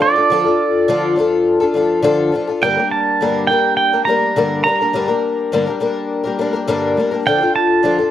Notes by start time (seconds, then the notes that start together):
0.00 F3 D4 F4 A4 D5
0.16 D4 F4 A4
0.30 D3 F3 D4 F4 A4
0.44 D4 F4 A4
0.88 D3 F3 D4 F4 A4
1.16 F3 D4 F4
1.20 A4
1.60 D4 F4 A4
1.74 F3 D4 F4 A4
2.02 D3 F3 D4 F4 A4
2.32 F3 D4 F4 A4
2.47 D4 F4 A4
2.62 G2 D3 G3 A#3 D4 A#4 G5
2.77 G3 A#3 D4 A#4
2.91 A5
3.21 G2 D3 G3 A#3 D4 A#4
3.47 G3 A#3 G5
3.52 D4 A#4
3.77 G5
3.93 G3 A#3 D4 A#4
4.05 G3 A#3 D4 A#5
4.10 A#4
4.36 G2 D3 G3 A#3 D4 A#4
4.64 G3 A#3 D4 A#5
4.68 A#4
4.81 G3 A#3 D4 A#4
4.93 G2 D3 G3 A#3 D4 A#4
5.08 G3 A#3 D4 A#4
5.52 G2 D3 G3 A#3 D4 A#4
5.66 G3 A#3 D4 A#4
5.80 G3 A#3 D4 A#4
6.24 G3 A#3 D4 A#4
6.39 G3 A#3 D4 A#4
6.53 G3 A#3 D4 A#4
6.67 G2 D3 G3 A#3 D4 A#4
6.97 G3 A#3 D4 A#4
7.11 G3 A#3 D4 A#4
7.26 D3 F3 D4 F4 A4 G5
7.41 D4 F4 A4
7.56 A5
7.83 D3 F3 D4 F4 A4
7.98 F4 A4